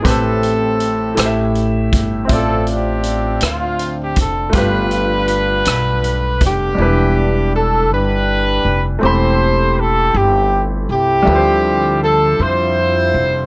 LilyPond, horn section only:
\new Staff \with { instrumentName = "Horn section" } { \time 6/8 \key a \minor \tempo 4. = 53 << { a'2 r4 | a'8 g'4 f'8. g'16 a'8 | b'2~ b'8 g'8~ | g'4 a'8 b'4. |
c''4 a'8 g'8. r16 g'8~ | g'4 a'8 c''4. | } \\ { <c' e'>2 r4 | <c' f'>8 <c' d'>4 <c' d'>4. | <d' f'>2~ <d' f'>8 <b d'>8~ | <b d'>4 r8 <d' g'>4. |
<g' a'>4. r4 <c' e'>8~ | <c' e'>4 r8 <e' f'>4. | } >> }